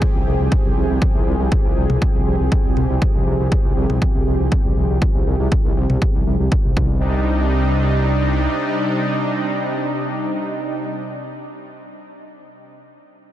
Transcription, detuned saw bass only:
0.15 0.23 C2 medium
0.27 0.36 C2 loud
0.40 0.48 C2 medium
0.65 0.73 C2 medium
0.77 0.86 C2 medium
0.90 0.98 C2 medium
1.15 1.23 C2 medium
1.27 1.36 C2 medium
1.40 1.48 C2 medium
1.65 1.73 C2 medium
1.77 1.86 C2 medium
1.90 1.98 C2 medium
2.15 2.23 C2 medium
2.27 2.36 C2 medium
2.40 2.48 C2 medium
2.65 2.73 C2 medium
2.77 2.86 C2 medium
2.90 2.98 C2 medium
3.15 3.23 C2 medium
3.27 3.36 C2 medium
3.40 3.48 C2 medium
3.65 3.73 C2 medium
3.77 3.86 C2 medium
3.90 3.98 C2 medium
4.15 4.23 C2 medium
4.27 4.36 C2 medium
4.40 4.48 C2 medium
4.65 4.73 C2 medium
4.77 4.86 C2 loud
4.90 4.98 C2 medium
5.15 5.23 C2 medium
5.27 5.36 C2 medium
5.40 5.48 C2 medium
5.65 5.73 C2 medium
5.77 5.86 C2 medium
5.90 5.98 C2 medium
6.15 6.23 C2 medium
6.27 6.36 C2 medium
6.40 6.48 C2 medium
6.65 6.73 C2 medium
6.77 8.48 C2 medium

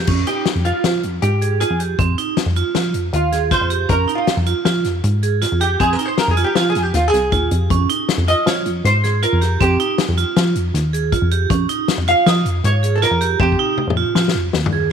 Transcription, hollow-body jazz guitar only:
0.27 0.67 G4 medium
0.65 1.19 F4 medium
1.22 1.58 G4 medium
1.61 1.79 G#4 medium
3.14 3.53 F4 medium
3.52 3.89 C5 loud
3.90 4.16 A#4 medium
4.15 4.33 F4 medium
5.61 5.80 G4 medium
5.81 5.93 G#4 medium
5.93 6.06 A#4 medium
6.06 6.18 C5 medium
6.19 6.32 A#4 medium
6.31 6.44 G#4 medium
6.44 6.57 G4 medium
6.57 6.69 F4 medium
6.70 6.83 G#4 medium
6.83 6.95 G4 medium
6.95 7.08 F4 medium
7.08 8.03 G#4 medium
8.28 8.47 D#5 loud
8.47 8.85 C#5 loud
8.85 9.20 C5 loud
9.23 9.62 A#4 medium
9.62 10.14 G4 medium
12.09 12.27 F5 loud
12.27 12.65 D#5 loud
12.65 12.96 C#5 loud
12.96 13.02 A4 medium
13.03 13.40 A#4 medium
13.41 13.93 G4 medium

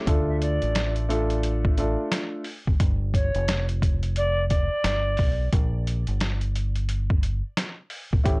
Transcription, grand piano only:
0.06 1.03 A3 medium
0.06 1.03 D4 medium
0.06 1.03 F4 medium
0.06 1.04 A4 loud
1.09 1.73 A3 loud
1.09 1.73 D4 medium
1.09 1.74 F4 medium
1.09 1.74 A4 loud
1.78 2.42 A3 medium
1.78 2.42 D4 medium
1.78 2.42 F4 medium
1.78 2.43 A4 medium
8.24 8.40 A3 medium
8.24 8.40 C#4 medium
8.24 8.40 E4 medium
8.24 8.40 G4 loud

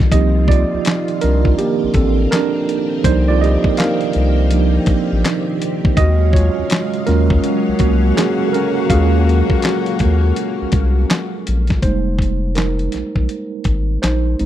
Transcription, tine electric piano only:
0.12 1.18 F3 medium
0.12 1.18 A#3 soft
0.12 1.18 C4 soft
0.12 1.18 D#4 medium
0.12 0.47 G4 medium
0.12 0.49 D#5 medium
0.48 1.19 F4 medium
0.48 1.24 D5 medium
1.21 1.57 D4 medium
1.21 1.56 A#4 medium
1.58 1.93 A#3 medium
1.58 1.92 G4 medium
1.95 2.30 C4 medium
1.95 2.32 A4 medium
2.31 3.01 D4 medium
2.31 3.07 A#4 medium
3.05 4.11 F3 medium
3.05 4.11 A#3 soft
3.05 3.27 D#4 medium
3.05 3.28 C5 loud
3.05 3.27 D5 soft
3.28 3.36 F4 medium
3.28 3.34 D5 loud
3.41 3.76 G4 medium
3.41 3.75 D#5 medium
3.78 5.21 A#4 medium
3.78 5.20 F5 medium
4.52 4.84 F3 soft
4.52 4.85 A#3 soft
4.52 4.85 D4 soft
4.52 4.85 D#4 medium
5.97 6.32 F#4 medium
5.97 6.35 D#5 loud
6.33 7.04 F4 medium
6.33 7.03 C#5 medium
7.06 8.13 F#3 medium
7.06 8.13 G#3 soft
7.06 7.77 C#4 medium
7.06 8.13 F4 medium
7.06 7.82 A#4 medium
7.80 8.15 A#3 medium
7.80 8.18 F#4 medium
8.17 8.47 C#4 medium
8.17 8.49 G#4 medium
8.48 8.53 A4 medium
8.53 8.88 C#4 medium
8.53 8.87 A#4 medium
8.90 11.79 F#3 medium
8.90 11.79 G#3 soft
8.90 11.79 C#4 medium
8.90 11.80 F4 medium
8.90 11.06 G#4 medium
8.90 11.05 F5 loud
11.83 12.36 G3 soft
11.83 12.36 G#3 soft
11.83 12.36 A#3 soft
11.83 12.36 D#4 medium
11.83 12.52 C5 medium
12.55 13.99 D#4 soft
12.55 14.06 A#4 medium
14.02 14.39 D#4 medium
14.02 14.46 C5 medium
14.39 14.46 G#3 soft
14.39 14.46 C4 soft
14.39 14.46 C#4 soft
14.39 14.46 D#4 soft

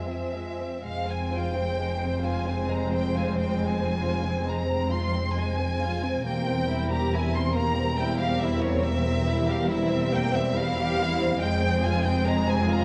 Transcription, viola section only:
0.00 0.58 F3 soft
0.00 0.58 C4 soft
0.84 6.23 G#3 soft
0.84 6.23 C4 soft
6.28 11.39 G3 soft
6.28 11.39 C4 soft
11.41 12.85 G#3 medium
11.41 12.85 C4 medium

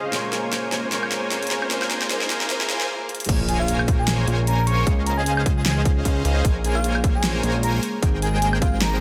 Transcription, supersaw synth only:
0.00 0.11 C#4 medium
0.00 0.11 G#4 medium
0.00 0.11 C5 medium
0.00 0.11 D#5 medium
0.00 0.11 F5 medium
0.13 0.91 A#3 medium
0.13 0.91 A#4 medium
0.13 0.91 C5 medium
0.13 0.91 C#5 medium
0.13 0.91 G#5 medium
0.92 1.70 A#3 medium
0.92 1.70 A#4 medium
0.92 1.70 C5 medium
0.92 1.70 C#5 medium
0.92 1.70 G#5 medium
1.71 2.09 A#3 medium
1.71 2.09 A#4 medium
1.71 2.09 C5 medium
1.71 2.09 G#5 medium
2.10 2.49 A#3 medium
2.10 2.49 A#4 medium
2.10 2.49 C5 medium
2.10 2.49 G#5 medium
2.50 2.68 A#3 medium
2.50 2.68 A#4 medium
2.50 2.68 C5 medium
2.50 2.68 G#5 medium
2.70 2.88 A#3 medium
2.70 2.88 A#4 medium
2.70 2.88 C5 medium
2.70 2.88 G#5 medium
3.29 4.25 A#3 medium
3.29 4.25 A#4 medium
3.29 4.25 C5 medium
3.29 4.25 C#5 medium
3.29 4.25 G#5 medium
4.28 4.85 A#3 medium
4.28 4.85 A#4 medium
4.28 4.85 C5 medium
4.28 4.85 C#5 medium
4.28 4.85 G#5 loud
4.87 6.03 C#4 loud
4.87 6.03 G#4 medium
4.87 6.03 C5 medium
4.87 6.03 D#5 medium
4.87 6.03 F5 loud
6.05 6.23 C#4 loud
6.05 6.23 G#4 medium
6.05 6.23 C5 medium
6.05 6.23 D#5 medium
6.05 6.23 F5 loud
6.25 6.43 C#4 medium
6.25 6.43 G#4 medium
6.25 6.43 C5 medium
6.25 6.43 D#5 medium
6.25 6.43 F5 medium
6.45 7.41 A#3 medium
6.45 7.41 C5 medium
7.43 7.82 A#3 medium
7.43 7.82 A#4 medium
7.43 7.82 C5 medium
7.43 7.82 C#5 medium
7.43 7.82 G#5 medium
8.02 9.01 G#3 medium
8.02 9.01 G#4 medium
8.02 9.01 A#4 medium
8.02 9.01 C5 medium
8.02 9.01 G5 loud

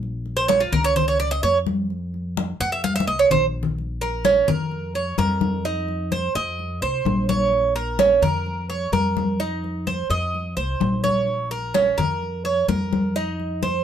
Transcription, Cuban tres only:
0.37 0.48 C5 medium
0.48 0.60 C#5 medium
0.60 0.72 F4 medium
0.73 0.84 A#4 medium
0.84 0.96 C#5 loud
0.96 1.07 C5 medium
1.08 1.19 C#5 medium
1.20 1.31 D5 loud
1.31 1.43 D#5 loud
1.43 1.57 C#5 loud
2.61 2.72 F#5 loud
2.72 2.83 E5 medium
2.84 2.95 F5 loud
2.96 3.07 E5 medium
3.07 3.19 D#5 medium
3.19 3.31 C#5 medium
3.31 3.45 C5 medium
4.01 4.24 A#4 medium
4.25 4.47 C#4 medium
4.48 4.93 A#4 medium
4.95 5.18 C#5 medium
5.18 5.64 A#4 medium
5.65 6.11 D#4 medium
6.12 6.35 C5 medium
6.35 6.81 D#5 medium
6.82 7.28 C5 medium
7.29 7.75 C#5 medium
7.76 7.99 A#4 medium
7.99 8.22 C#4 medium
8.22 8.68 A#4 medium
8.70 8.92 C#5 medium
8.93 9.38 A#4 medium
9.40 9.85 D#4 medium
9.87 10.10 C5 medium
10.10 10.56 D#5 medium
10.57 11.03 C5 medium
11.04 11.50 C#5 medium
11.51 11.74 A#4 medium
11.74 11.97 C#4 medium
11.98 12.44 A#4 medium
12.45 12.68 C#5 medium
12.68 13.14 A#4 medium
13.16 13.61 D#4 medium
13.63 13.84 C5 medium

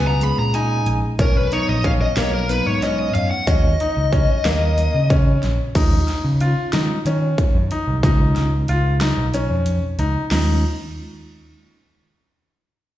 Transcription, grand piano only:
0.00 0.36 B3 medium
0.55 1.01 D#4 medium
1.20 1.43 C#4 medium
1.52 1.76 D#4 medium
1.85 2.08 C#4 medium
2.18 2.65 A#3 medium
2.83 3.30 C#4 medium
3.48 3.71 C#4 medium
3.81 4.04 D#4 medium
4.13 4.36 C#4 medium
4.45 4.92 A#3 medium
5.11 5.58 C#4 medium
5.76 6.23 D#4 medium
6.41 6.64 F4 medium
6.74 6.97 D#4 medium
7.07 7.53 C#4 medium
7.72 7.95 D#4 medium
8.04 8.51 D#4 medium
8.69 8.92 F4 medium
9.01 9.25 D#4 medium
9.34 9.81 C#4 medium
9.99 10.23 D#4 medium
10.32 10.62 D#4 medium

